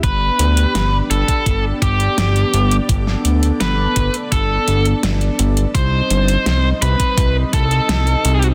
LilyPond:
<<
  \new Staff \with { instrumentName = "Lead electric guitar" } { \time 4/4 \key g \major \tempo 4 = 84 b'4. a'8. r16 g'4. | r4 b'8. r16 a'8. r4 r16 | c''4. b'8. r16 a'4. | }
  \new Staff \with { instrumentName = "Analog synth pad" } { \time 4/4 \key g \major << { <b d' d''>1~ | <b d' d''>1 | <g c' ees''>1 | } \\ { g'1 | a'1 | ees'1 | } >> }
  \new Staff \with { instrumentName = "Analog synth bass" } { \clef bass \time 4/4 \key g \major g,,8 d,8 g,,8 g,,8 g,,8 g,,8 g,,8 g,,8 | g,,8 d,8 g,,8 g,,8 g,,8 g,,8 g,,8 g,,8 | c,8 g,,8 c,8 c,8 c,8 c,8 c,8 c,8 | }
  \new DrumStaff \with { instrumentName = "Drums" } \drummode { \time 4/4 <hh bd>8 hh16 hh16 <hh sn>8 hh16 <hh bd>16 <hh bd>8 <hh bd>16 hh16 <hh sn>16 hh16 hh16 hh16 | <hh bd>16 sn16 hh16 hh16 <hh sn>8 <hh bd>16 hh16 <hh bd>8 hh16 hh16 <hh sn>16 hh16 hh16 hh16 | <hh bd>8 hh16 hh16 <hh sn>8 hh16 <hh bd>16 <hh bd>8 <hh bd>16 hh16 <hh sn>16 hh16 hh16 hh16 | }
>>